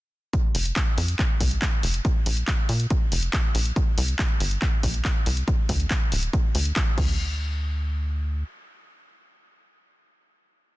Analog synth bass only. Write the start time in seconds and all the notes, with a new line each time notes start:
0.55 F1
0.98 F2
1.40 C2
1.83 F1
2.26 A#1
2.69 A#2
3.12 F1
3.55 A#1
3.98 C2
4.41 G1
4.83 A#1
5.26 C2
5.69 D2
6.12 D1
6.55 D2
6.98 D2